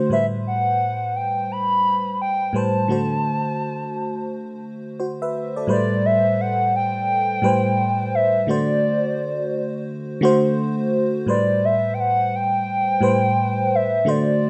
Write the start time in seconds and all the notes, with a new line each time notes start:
Already playing: D3 A3 F#4 C5
0.09 A2 G3 B4 C5 E5
0.47 F#5
1.16 G5
1.52 B5
2.22 G5
2.53 A2 G3 B4 C5 A5
2.88 D3 A3 F#4 C5
5.00 F#4 C5
5.22 B4 E5
5.56 A4 D5
5.67 A2 G3 B4 C5
5.71 D5
6.06 E5
6.41 F#5
6.76 G5
7.42 A2 G3 B4 C5
8.15 E5
8.47 D3 A3 F#4 C5 D5
10.21 D3 A3 F#4 C5
11.26 A2 G3 B4 C5 D5
11.65 E5
11.94 G5
12.00 F#5
12.35 G5
13.01 A2 G3 B4 C5
13.75 E5
14.05 D3 A3 F#4 C5
14.10 D5